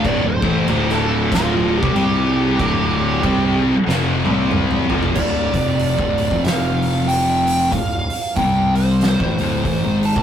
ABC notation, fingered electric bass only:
X:1
M:4/4
L:1/16
Q:"Swing" 1/4=94
K:Dm
V:1 name="Fingered electric bass" clef=bass
D,,, D,,, A,,,2 D,,,6- D,,, C,, C,,4 | D,,,4 C,,3 z F,,,2 C,,4 F,,,2 | D,,,2 F,,,3 D,,,2 F,,,8- F,,, | D,,,2 z2 C,,4- C,, A,,, D,,,2 A,,, ^G,,,2 D,,, |]